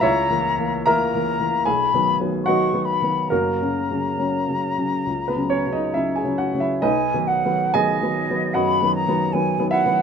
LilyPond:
<<
  \new Staff \with { instrumentName = "Flute" } { \time 4/4 \key b \major \tempo 4 = 71 ais''4 ais''4 b''8 r8 cis'''8 b''8 | ais''2.~ ais''8 r8 | gis''8 fis''8 dis''4 b''8 ais''8 gis''8 fis''8 | }
  \new Staff \with { instrumentName = "Grand piano" } { \time 4/4 \key b \major <e' cis'' e''>4 <ais' e'' ais''>4 <gis' gis''>4 <fis' dis'' fis''>4 | <ais fis' ais'>2~ <ais fis' ais'>16 <b b'>16 <cis' cis''>16 <dis' dis''>16 <e' e''>16 <gis' gis''>16 <fis' fis''>16 <e' e''>16 | <dis' b' dis''>4 <gis' dis'' gis''>4 <fis' dis'' fis''>4. <e' e''>8 | }
  \new Staff \with { instrumentName = "Grand piano" } { \clef bass \time 4/4 \key b \major \tuplet 3/2 { cis,8 <e ais>8 <e ais>8 <e ais>8 <e ais>8 <e ais>8 b,,8 <dis fis b>8 <dis fis b>8 <dis fis b>8 <dis fis b>8 <dis fis b>8 } | \tuplet 3/2 { <fis,, fis,>8 <cis fis cis'>8 <cis fis cis'>8 <cis fis cis'>8 <cis fis cis'>8 <cis fis cis'>8 cis,8 <cis fis cis'>8 <cis fis cis'>8 <cis fis cis'>8 <cis fis cis'>8 <cis fis cis'>8 } | \tuplet 3/2 { b,,8 <dis fis b>8 <dis fis b>8 <dis fis b>8 <dis fis b>8 <dis fis b>8 fis,8 <dis fis b>8 <dis fis b>8 <dis fis b>8 <dis fis b>8 <dis fis b>8 } | }
>>